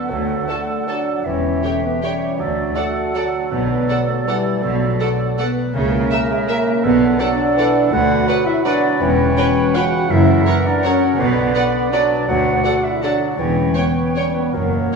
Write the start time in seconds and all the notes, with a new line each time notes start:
Already playing: D3 B3 D4 F#4 A4 B4 D5 F#5 A5
0.02 F#3
0.10 D2 D3 F#3 A3 A4
0.20 D4
0.29 A4
0.38 F#4
0.47 D3 F#4 A4 D5 A5
0.58 A5
0.68 F#5
0.78 D5
0.88 F#3 D4 F#4 A4 D5 A5
0.98 A4
1.07 D4
1.17 F#3
1.24 E1 E2 E3 C#4 G4 C#5 E5
1.34 E4
1.43 G4
1.53 C#5
1.63 A3 G4 C#5 G5
1.73 G5
1.83 B3 B4 C#6
1.93 G4
2.02 G3 C#4 G4 C#5 G5
2.12 G4
2.21 G3
2.30 E4
2.39 D2 D3 F#3 D4 A4 D5
2.48 D4
2.57 F#4
2.66 D5
2.75 A3 F#4 A4 D5 F#5
2.85 F#5
2.95 D6
3.04 A4
3.14 F#3 A4 D5 F#5
3.24 F#4
3.33 A3
3.42 D4
3.51 B1 B2 B3 A4 B4 D5
3.61 F#3
3.70 F#4
3.80 D5
3.89 A4 D5 F#5
4.00 F#5
4.09 A3 A4 D6
4.18 A4
4.24 E3 G3 G4 A4 D5 F#5
4.36 F#4
4.54 F#3
4.63 B1 B2 D3 F#3 F#4
4.72 A3
4.81 F#4
4.90 D5
4.99 D3 A4 D5 F#5
5.09 F#5
5.19 D6
5.29 A4
5.38 B3 A4 B4 D5 F#5
5.48 F#4
5.57 A3
5.65 F#3
5.73 C#2 C#3 A#3 A#4 E5
5.82 C#4
5.92 E4
6.02 A#4
6.11 E4 A#4 E5
6.20 E5
6.29 G#3 G#4 A#5
6.39 A#4
6.47 A#3 E4 A#4 E5
6.59 A#3
6.67 C#4
6.76 A#3
6.84 B1 B2 D3 B3 A4 B4 F#5
6.93 F#3
7.02 F#4
7.11 A4
7.20 F#3 D4 A4 B4 D5 F#5
7.30 F#5
7.40 A5
7.49 B4
7.57 E3 A4 D5 F#5
7.68 F#4
7.76 B3
7.85 F#3
7.92 D2 D3 F#4 B4 F#5
8.01 D4
8.10 F#4
8.18 B4
8.27 F#3 F#4 B4 D5 F#5
8.37 F#5
8.46 E4 E5 B5
8.56 B4
8.64 F#3 D4 F#4 B4 D5 F#5
8.75 B3
8.92 B3
9.00 E1 E2 E3 C#4 C#5 G5
9.09 B3
9.19 G4
9.28 B4
9.37 B2 B4 C#5 G5
9.46 G5
9.56 B5
9.65 C#5
9.75 C#3 F#4 B4 C#5 F#5 G5
9.85 G4
9.95 C#4
10.03 B3
10.10 F#1 F#2 E4 A#4 E5 F#5
10.21 C#3
10.30 F#4
10.38 A#4
10.47 E3 A#4 C#5 F#5
10.58 F#5
10.66 D4 D5 A#5
10.77 C#5
10.84 F#3 C#4 A#4 C#5 F#5
10.94 F#4
11.12 C#3
11.19 B1 B2 D3 B3 B4 D5
11.29 F#3
11.38 F#4
11.47 B4
11.55 B4 D5 F#5
11.66 F#5
11.75 B5
11.85 D5
11.91 F#3 D4 B4 D5 F#5
12.03 F#4
12.12 D4
12.22 F#3
12.28 D2 D3 F#3 F#4 F#5
12.38 A3
12.48 F#4
12.56 A4
12.64 D3 A4 D5 F#5
12.75 F#5
12.84 E4 E5 A5
12.94 D5
13.02 F#3 D4 A4 D5 F#5
13.13 F#4
13.22 D4
13.31 A3
13.38 E1 E2 E3 C#4 C#5 G5
13.48 E4
13.58 G4
13.67 C#5
13.75 B3 G4 B4 C#5 G5
13.87 G5
13.97 C#6
14.06 C#5
14.15 G3 C#4 G4 C#5 G5
14.25 C#4
14.34 B3 E4 B4
14.45 C#4
14.52 F#1 F#2 F#3 A#3 A#4 C#5 F#5
14.61 F#2 C#3
14.68 F#2
14.74 F#2 F#4
14.84 F#2 C#5
14.91 F#2